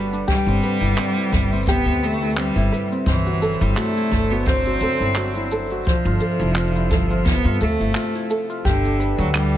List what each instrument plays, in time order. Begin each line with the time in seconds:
Already playing: upright bass G1, harmonium D3 D4 B4 F#5, cello G3, ukulele F#4 G4 B4
0.13 ukulele D4, cabasa
0.27 cello G3, ukulele G4, kick, cabasa
0.46 upright bass G1, ukulele C4, cabasa
0.63 harmonium C3, ukulele B4, cabasa
0.81 upright bass G1, ukulele E4, cabasa
0.97 ukulele C4, clap, cabasa
1.17 ukulele E4, cabasa
1.32 upright bass G1, ukulele B4, kick, cabasa
1.50 ukulele C4, harmonium E5, cabasa
1.55 cabasa
1.61 cabasa
1.63 cabasa
1.65 cello B3, ukulele G4, kick, cabasa
1.68 cabasa
1.85 upright bass D2, ukulele C4, cabasa
2.03 cello A3, ukulele B4, cabasa
2.22 ukulele E4
2.30 cabasa
2.37 cello G3, ukulele C4, clap, cabasa
2.56 upright bass G1, ukulele E4, cabasa
2.72 ukulele B4, cabasa
2.92 ukulele C4, cabasa
3.06 upright bass G1, cello E3, harmonium F#3, ukulele C5, kick, cabasa
3.26 ukulele F#4, cabasa
3.42 ukulele A4, cabasa
3.53 harmonium C5
3.61 upright bass G1, cello G3, ukulele E4, cabasa
3.77 cello A3, ukulele F#4, clap, cabasa
3.83 harmonium D4
3.97 ukulele E4, cabasa
4.11 upright bass G1, ukulele A4, kick, cabasa
4.30 cello B3, ukulele F#4, cabasa
4.46 cello C4, ukulele C5, kick, cabasa
4.65 ukulele F#4, cabasa
4.80 upright bass D2, ukulele A4, cabasa
5.00 upright bass G1, ukulele E4
5.15 ukulele F#4, clap, cabasa
5.35 ukulele E4, cabasa
5.51 ukulele A4, cabasa
5.70 ukulele F#4, cabasa
5.84 cello F3, harmonium F3, ukulele C5, kick, cabasa
6.05 upright bass G1, ukulele F4, cabasa
6.11 harmonium A4
6.20 harmonium C3, ukulele A4, cabasa
6.40 upright bass F1, ukulele E4, cabasa
6.56 ukulele F4, clap, cabasa
6.75 ukulele E4, cabasa
6.91 upright bass G1, ukulele A4, kick, cabasa
7.10 ukulele F4, cabasa
7.25 cello B3, kick, cabasa
7.45 upright bass G2, ukulele F4, cabasa
7.60 upright bass D2, cello A3, ukulele A4, cabasa
7.80 upright bass G1, ukulele E4, cabasa
7.95 ukulele F4, clap, cabasa
8.15 ukulele E4, cabasa
8.30 ukulele A4, cabasa
8.50 ukulele F4, cabasa
8.65 upright bass G1, cello D3, harmonium G3, ukulele G4, kick, cabasa
8.85 ukulele D4, cabasa
9.00 ukulele B4, harmonium B4, cabasa
9.13 harmonium D4
9.18 upright bass D2, cello F#3, ukulele F#4, cabasa
9.34 cello G3, ukulele D4, clap, cabasa, claves
9.54 ukulele F#4